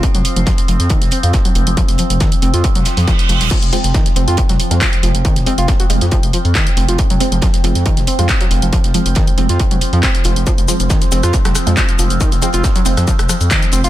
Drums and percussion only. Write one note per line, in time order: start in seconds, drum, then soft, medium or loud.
0.03 kick loud
0.03 closed hi-hat medium
0.15 closed hi-hat medium
0.25 closed hi-hat medium
0.25 open hi-hat loud
0.36 closed hi-hat medium
0.46 kick loud
0.46 snare loud
0.46 closed hi-hat medium
0.57 snare soft
0.57 closed hi-hat medium
0.68 closed hi-hat medium
0.68 open hi-hat loud
0.80 snare soft
0.80 closed hi-hat medium
0.90 kick loud
0.90 closed hi-hat medium
1.02 snare soft
1.02 closed hi-hat medium
1.11 closed hi-hat medium
1.11 open hi-hat loud
1.23 snare soft
1.23 closed hi-hat medium
1.33 kick loud
1.33 snare loud
1.33 closed hi-hat medium
1.45 closed hi-hat medium
1.55 closed hi-hat medium
1.55 open hi-hat loud
1.67 closed hi-hat medium
1.77 kick loud
1.77 closed hi-hat medium
1.88 snare soft
1.88 closed hi-hat medium
1.98 closed hi-hat medium
1.98 open hi-hat loud
2.10 closed hi-hat medium
2.10 closed hi-hat soft
2.20 kick loud
2.20 snare loud
2.20 closed hi-hat medium
2.32 closed hi-hat medium
2.42 closed hi-hat medium
2.42 open hi-hat loud
2.54 snare soft
2.54 closed hi-hat medium
2.64 kick loud
2.64 closed hi-hat medium
2.75 closed hi-hat medium
2.85 snare loud
2.85 closed hi-hat medium
2.85 open hi-hat loud
2.97 snare loud
2.97 closed hi-hat medium
2.97 open hi-hat medium
3.08 kick loud
3.08 snare loud
3.08 closed hi-hat medium
3.19 closed hi-hat medium
3.29 closed hi-hat medium
3.29 open hi-hat loud
3.41 snare loud
3.41 closed hi-hat medium
3.51 kick loud
3.51 closed hi-hat medium
3.51 closed hi-hat loud
3.51 crash medium
3.62 closed hi-hat medium
3.73 closed hi-hat medium
3.73 open hi-hat loud
3.84 closed hi-hat medium
3.94 kick loud
3.94 snare loud
3.94 closed hi-hat medium
4.06 snare soft
4.06 closed hi-hat medium
4.16 closed hi-hat medium
4.16 open hi-hat loud
4.28 snare soft
4.28 closed hi-hat medium
4.37 kick loud
4.37 closed hi-hat medium
4.49 snare soft
4.49 closed hi-hat medium
4.60 closed hi-hat medium
4.60 open hi-hat loud
4.71 snare soft
4.71 closed hi-hat medium
4.81 kick loud
4.81 snare loud
4.81 clap loud
4.81 closed hi-hat medium
4.93 closed hi-hat medium
5.03 closed hi-hat medium
5.03 open hi-hat loud
5.15 closed hi-hat medium
5.25 kick loud
5.25 closed hi-hat medium
5.36 snare soft
5.36 closed hi-hat medium
5.46 closed hi-hat medium
5.46 open hi-hat loud
5.58 closed hi-hat soft
5.58 closed hi-hat medium
5.68 kick loud
5.68 snare loud
5.68 closed hi-hat medium
5.80 closed hi-hat medium
5.90 closed hi-hat medium
5.90 open hi-hat loud
6.01 snare medium
6.01 closed hi-hat medium
6.11 kick loud
6.11 closed hi-hat loud
6.11 closed hi-hat medium
6.23 closed hi-hat medium
6.33 closed hi-hat medium
6.33 open hi-hat loud
6.45 open hi-hat medium
6.55 kick loud
6.55 snare loud
6.55 clap loud
6.55 closed hi-hat medium
6.67 closed hi-hat medium
6.77 closed hi-hat medium
6.77 open hi-hat loud
6.88 closed hi-hat medium
6.98 kick loud
6.98 closed hi-hat medium
7.10 closed hi-hat medium
7.20 closed hi-hat medium
7.20 open hi-hat loud
7.32 closed hi-hat medium
7.42 kick loud
7.42 snare loud
7.42 closed hi-hat loud
7.42 closed hi-hat medium
7.54 snare soft
7.54 closed hi-hat medium
7.64 closed hi-hat medium
7.64 open hi-hat loud
7.75 snare soft
7.75 closed hi-hat medium
7.86 kick loud
7.86 closed hi-hat medium
7.97 snare soft
7.97 closed hi-hat medium
8.07 closed hi-hat medium
8.07 open hi-hat loud
8.19 snare soft
8.19 closed hi-hat medium
8.28 kick loud
8.28 snare loud
8.28 clap loud
8.28 closed hi-hat medium
8.41 closed hi-hat medium
8.51 closed hi-hat medium
8.51 open hi-hat loud
8.62 closed hi-hat medium
8.73 kick loud
8.73 closed hi-hat medium
8.84 snare soft
8.84 closed hi-hat medium
8.94 closed hi-hat medium
8.94 open hi-hat loud
9.06 closed hi-hat medium
9.06 closed hi-hat soft
9.15 kick loud
9.15 snare loud
9.15 closed hi-hat medium
9.27 closed hi-hat medium
9.38 closed hi-hat medium
9.38 open hi-hat loud
9.49 snare soft
9.49 closed hi-hat medium
9.59 kick loud
9.59 closed hi-hat medium
9.71 closed hi-hat medium
9.81 closed hi-hat medium
9.81 open hi-hat loud
9.93 open hi-hat medium
10.03 kick loud
10.03 snare loud
10.03 clap loud
10.03 closed hi-hat medium
10.15 closed hi-hat medium
10.24 closed hi-hat medium
10.24 open hi-hat loud
10.36 closed hi-hat medium
10.47 kick loud
10.47 closed hi-hat medium
10.47 shaker soft
10.58 closed hi-hat medium
10.58 shaker soft
10.68 closed hi-hat medium
10.68 open hi-hat loud
10.68 shaker medium
10.80 closed hi-hat medium
10.80 shaker soft
10.89 kick loud
10.89 snare loud
10.89 closed hi-hat medium
10.89 shaker soft
11.01 snare medium
11.01 closed hi-hat medium
11.01 shaker soft
11.12 closed hi-hat medium
11.12 open hi-hat loud
11.12 shaker medium
11.23 cross-stick medium
11.23 snare soft
11.23 closed hi-hat medium
11.23 shaker soft
11.33 kick loud
11.33 closed hi-hat medium
11.33 shaker soft
11.45 cross-stick loud
11.45 snare soft
11.45 closed hi-hat medium
11.45 shaker soft
11.55 cross-stick medium
11.55 closed hi-hat medium
11.55 open hi-hat loud
11.55 shaker medium
11.66 snare soft
11.66 closed hi-hat medium
11.66 shaker soft
11.77 kick loud
11.77 snare loud
11.77 clap loud
11.77 closed hi-hat medium
11.77 shaker soft
11.89 closed hi-hat medium
11.89 shaker soft
11.99 closed hi-hat medium
11.99 open hi-hat loud
11.99 shaker medium
12.10 closed hi-hat medium
12.10 shaker soft
12.21 kick loud
12.21 closed hi-hat medium
12.21 shaker soft
12.32 snare soft
12.32 closed hi-hat medium
12.32 shaker soft
12.42 closed hi-hat medium
12.42 open hi-hat loud
12.42 shaker medium
12.53 closed hi-hat soft
12.53 closed hi-hat medium
12.53 shaker soft
12.64 kick loud
12.64 snare loud
12.64 closed hi-hat medium
12.64 shaker soft
12.76 closed hi-hat medium
12.76 shaker soft
12.85 closed hi-hat medium
12.85 open hi-hat loud
12.85 shaker medium
12.97 cross-stick medium
12.97 snare soft
12.97 closed hi-hat medium
12.97 shaker soft
13.07 kick loud
13.07 closed hi-hat medium
13.07 shaker soft
13.19 cross-stick medium
13.19 closed hi-hat medium
13.19 shaker soft
13.29 cross-stick medium
13.29 closed hi-hat medium
13.29 open hi-hat loud
13.29 shaker medium
13.41 open hi-hat medium
13.41 shaker soft
13.50 kick loud
13.50 snare loud
13.50 clap loud
13.50 closed hi-hat medium
13.50 shaker soft
13.62 closed hi-hat medium
13.62 shaker soft
13.72 closed hi-hat medium
13.72 open hi-hat loud
13.72 shaker medium
13.84 closed hi-hat medium
13.84 shaker soft